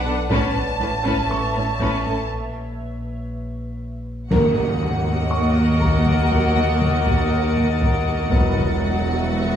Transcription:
Already playing: B1 B4 D5 F#5
0.06 B2 D4 A4
0.31 A1 A2 C#4 B4 C#5 E5 A5, taiko
0.80 A1 A2 C#4 B4
1.04 A2 C#4 B4, taiko
1.30 A1 A2 C#4 A4 C#6
1.54 A2 C#4 B4
1.80 A1 A2 C#4 B4, taiko
2.06 A2 C#4 A4
2.32 A#1
4.30 D#2 D#3 F#3 A#3 F#4 A#4 D#5 F#5 D#6, taiko, impact
4.56 taiko mid
5.30 C#5 C#6 A6
5.80 A#5, taiko
6.06 taiko mid
6.30 F#3 A#4, taiko
6.56 taiko mid
6.81 taiko mid
7.06 taiko
7.56 taiko mid
7.81 taiko
8.30 E1 E2 F#3 F#4 B4 E5 F#5, taiko
8.56 taiko mid

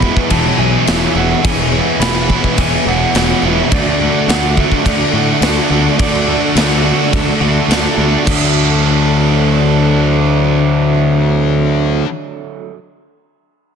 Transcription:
Already playing: E2 E3 G#4 C#5 E5 B5
0.00 B2 E3 B3 E4, kick
0.05 G#3
0.17 kick
0.29 E1 E2 B2 E3 G#3 B3 C#4 E4 A5, kick, crash
0.58 B1 B2 E3 G#3 B3 E4 G#4 G#5
0.85 E1 E2 B2 E3 G#3 C#4, snare, crash
0.90 B3 E4
1.15 E1 B2 E3 G#3 B3 E4 F#5
1.42 E1 E2 B2 E3 G#3 G#5 C#6, kick, crash
1.47 B3 E4
1.71 B2 E3 B3 E4
1.76 G#3
2.00 E1 E2 B2 E3 G#3 B3 E4 G#4 B5, snare, crash
2.28 B2 E3 B3 E4, kick
2.32 G#3
2.44 kick
2.56 E1 E2 B2 E3 G#3 B3 C#4 G#5, kick, crash
2.61 E4
2.84 E1 B2 E3 E4 G#4 F#5
2.88 G#3 B3
3.13 E1 E2 B2 E3 G#3 B3 C#4, snare, crash
3.18 E4
3.42 E1 B2 E3 G#3 B3 E4 E5
3.71 D2 D3 A3 D4 F#4 A4 D5 F#5 D6, kick, crash
4.01 A3 D4 F#4
4.28 D2 D3 A3 D4 F#4 F#5, snare, crash
4.57 A3 D4 F#4 E5, kick
4.72 kick
4.85 D2 D3 A3 D4 F#4, kick, crash
5.13 A2 A3 D4 F#4
5.41 D2 D3 A3 D4 F#4, snare, crash
5.70 D2 A3 D4 F#4
5.99 D2 D3 A3 D4 F#4 D5 E6, kick, crash
6.27 A3 D4 F#4
6.55 D2 D3 A3 D4 F#4, snare, crash
6.84 A3 D4 F#4
7.12 D2 D3 A3 D4 F#4, kick, crash
7.40 D2 A3 D4 F#4
7.68 D2 D3 A3 D4 F#4, snare, crash
7.97 D2 A3 D4 F#4
8.25 D2 D3 F#3 A3 D4 F#4 A4 F#5, kick, crash
8.29 D4

